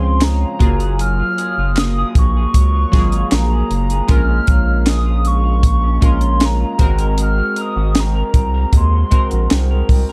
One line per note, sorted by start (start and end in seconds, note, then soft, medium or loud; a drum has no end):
0.00 0.45 C#2 medium
0.00 0.68 C#3 medium
0.00 0.59 F3 medium
0.00 0.21 G#3 medium
0.00 0.60 C4 medium
0.00 0.68 C4 medium
0.00 0.60 C#4 medium
0.00 0.41 F4 medium
0.00 0.60 G#4 medium
0.00 0.25 C6 medium
0.21 0.60 G#3 medium
0.21 1.00 A#5 loud
0.21 snare loud
0.21 clap medium
0.21 closed hi-hat medium
0.41 1.02 F4 medium
0.59 1.23 F#1 medium
0.59 1.84 F#3 medium
0.59 0.98 F#3 medium
0.59 1.84 A#3 medium
0.59 1.84 F4 medium
0.59 1.85 G#4 medium
0.59 kick loud
0.59 closed hi-hat medium
0.80 1.38 G#4 medium
0.80 closed hi-hat medium
0.99 2.54 F#3 medium
0.99 1.80 F6 loud
0.99 closed hi-hat medium
1.20 1.59 F4 medium
1.38 1.98 G#4 medium
1.38 closed hi-hat medium
1.58 2.04 F#1 medium
1.58 2.75 F4 medium
1.76 2.17 A#3 medium
1.76 2.20 D#6 loud
1.76 snare loud
1.76 clap medium
1.76 closed hi-hat loud
1.98 2.36 G#4 medium
2.15 2.46 A#1 medium
2.15 3.33 A#3 medium
2.15 3.36 C#6 loud
2.15 kick loud
2.15 closed hi-hat medium
2.37 2.94 G#4 medium
2.54 2.85 C#2 medium
2.54 4.18 F#3 medium
2.54 kick medium
2.54 closed hi-hat loud
2.75 3.13 F4 medium
2.92 3.24 G#1 medium
2.92 3.82 F#3 medium
2.92 2.99 G#3 medium
2.92 3.82 F4 medium
2.92 3.83 G#4 medium
2.92 3.53 G#4 medium
2.92 kick loud
2.92 snare soft
2.92 closed hi-hat medium
2.99 3.85 A#3 medium
3.12 4.48 F4 medium
3.12 closed hi-hat medium
3.31 3.63 A#1 loud
3.31 3.71 A#3 medium
3.31 4.10 A#5 medium
3.31 snare loud
3.31 clap medium
3.31 closed hi-hat medium
3.53 3.91 G#4 medium
3.71 4.01 F#1 medium
3.71 4.28 A#3 medium
3.71 closed hi-hat medium
3.90 5.66 G#4 medium
3.90 closed hi-hat medium
4.08 4.40 A#1 loud
4.08 5.62 A#2 medium
4.08 5.27 G#3 medium
4.08 5.28 C#4 medium
4.08 5.28 F4 medium
4.08 5.29 A#4 medium
4.08 kick loud
4.08 closed hi-hat medium
4.12 4.84 F6 loud
4.29 4.66 C#4 medium
4.47 5.99 A#1 medium
4.47 5.04 F4 medium
4.47 kick loud
4.47 closed hi-hat medium
4.68 5.82 C#4 medium
4.86 5.24 G#3 medium
4.86 5.29 D#6 loud
4.86 snare loud
4.86 clap medium
4.86 closed hi-hat loud
5.05 5.42 F4 medium
5.25 6.40 G#3 medium
5.25 6.07 C#6 medium
5.25 closed hi-hat medium
5.44 6.01 F4 medium
5.63 6.87 A#2 medium
5.63 kick medium
5.63 closed hi-hat medium
5.83 6.20 C#4 medium
6.01 6.65 A#1 medium
6.01 6.77 G#3 medium
6.01 6.80 C#4 medium
6.01 6.59 F4 medium
6.01 6.80 F4 medium
6.01 6.80 A#4 medium
6.01 kick loud
6.01 closed hi-hat medium
6.05 6.47 C6 loud
6.21 6.87 C#4 medium
6.21 closed hi-hat soft
6.40 6.79 G#3 medium
6.40 snare loud
6.40 clap medium
6.40 closed hi-hat medium
6.45 7.21 A#5 medium
6.61 6.88 F4 medium
6.78 7.42 G#1 loud
6.78 8.03 G#3 medium
6.78 7.18 G#3 medium
6.78 8.03 C4 medium
6.78 8.04 F#4 medium
6.78 8.04 A#4 medium
6.78 kick loud
6.78 closed hi-hat medium
6.98 7.56 A#4 medium
6.98 closed hi-hat medium
7.18 8.73 G#3 medium
7.18 closed hi-hat medium
7.22 7.63 F6 loud
7.38 7.75 F#4 medium
7.56 8.14 A#4 medium
7.56 closed hi-hat medium
7.61 8.01 D#6 medium
7.76 8.23 G#1 medium
7.76 8.91 F#4 medium
7.95 8.34 C4 medium
7.95 snare loud
7.95 clap medium
7.95 closed hi-hat loud
8.00 8.79 A#5 medium
8.15 8.53 A#4 medium
8.34 8.65 C2 medium
8.34 9.50 C4 medium
8.34 kick medium
8.34 closed hi-hat medium
8.54 9.10 A#4 medium
8.73 9.04 D#2 loud
8.73 10.12 G#3 medium
8.73 kick medium
8.73 closed hi-hat medium
8.77 9.91 C6 medium
8.92 9.30 F#4 medium
9.11 9.20 A#1 soft
9.11 10.01 G#3 medium
9.11 10.01 C4 medium
9.11 10.02 F#4 medium
9.11 9.69 A#4 medium
9.11 10.02 A#4 medium
9.11 kick loud
9.11 closed hi-hat medium
9.31 9.48 A#1 medium
9.31 10.12 F#4 medium
9.31 closed hi-hat medium
9.50 9.83 C2 medium
9.50 9.89 C4 medium
9.50 snare loud
9.50 clap medium
9.50 closed hi-hat medium
9.70 10.08 A#4 medium
9.89 10.05 C2 loud
9.89 10.12 C4 medium
9.89 kick medium
9.89 open hi-hat medium
10.09 10.12 A#4 medium